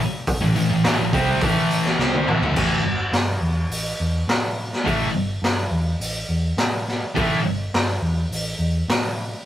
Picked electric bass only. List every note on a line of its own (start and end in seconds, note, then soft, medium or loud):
0.41 0.54 A1 medium
0.54 0.68 A1 medium
0.69 0.82 A1 medium
0.83 0.97 A1 medium
0.98 1.11 A1 medium
1.13 1.40 C2 loud
1.41 1.95 A1 loud
1.98 2.25 C2 medium
2.27 2.40 A1 medium
2.41 2.55 D2 medium
2.55 2.78 A1 medium
2.81 3.05 G1 medium
3.12 3.35 G2 medium
3.41 3.63 E2 medium
3.69 3.92 A1 medium
4.00 4.22 E2 loud
4.28 4.72 A2 medium
4.86 5.08 A1 medium
5.15 5.37 G1 medium
5.42 5.65 G2 medium
5.71 5.93 E2 medium
6.00 6.22 A1 medium
6.29 6.51 E2 medium
6.57 7.02 A2 medium
7.16 7.38 A1 medium
7.45 7.67 G1 medium
7.74 7.96 G2 medium
8.01 8.24 E2 medium
8.30 8.53 A1 medium
8.59 8.81 E2 medium
8.88 9.33 A2 medium